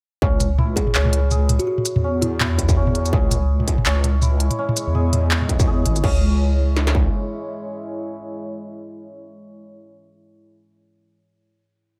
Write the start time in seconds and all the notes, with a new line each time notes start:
0.22 C#2 C#4, kick
0.40 closed hi-hat, mid tom, shaker
0.58 E4, mid tom
0.76 G#4, kick, closed hi-hat
0.87 mid tom
0.95 C#2 C#4, clap, shaker
1.05 mid tom
1.13 closed hi-hat
1.31 G#4, mid tom, shaker
1.49 closed hi-hat, mid tom
1.59 F#4, closed hi-hat
1.67 F#4
1.78 mid tom
1.85 closed hi-hat, shaker
1.96 E2, mid tom
2.04 C#4
2.22 E4, closed hi-hat, mid tom
2.40 E4, clap, mid tom
2.58 kick, closed hi-hat
2.69 kick, mid tom, shaker
2.77 C#4
2.87 mid tom
2.95 closed hi-hat
3.06 closed hi-hat, shaker
3.13 C#2 G#3 E4 G#4 C#5, kick, mid tom
3.31 closed hi-hat, mid tom, shaker
3.60 mid tom
3.68 kick, closed hi-hat
3.78 mid tom
3.86 C#2 C#4, clap, shaker
4.04 closed hi-hat, mid tom
4.22 E4, mid tom, shaker
4.40 closed hi-hat
4.51 closed hi-hat, mid tom
4.59 C#4
4.69 mid tom
4.77 closed hi-hat, shaker
4.87 E2
4.95 G#4, mid tom
5.13 closed hi-hat, mid tom
5.31 clap
5.42 mid tom
5.49 kick, closed hi-hat
5.60 kick, mid tom, shaker
5.67 G#4
5.86 G#1, closed hi-hat, mid tom
5.96 closed hi-hat, shaker
6.04 C#2 G#3 C#4 E4 C#5, kick, crash
6.77 snare
6.87 snare
6.95 kick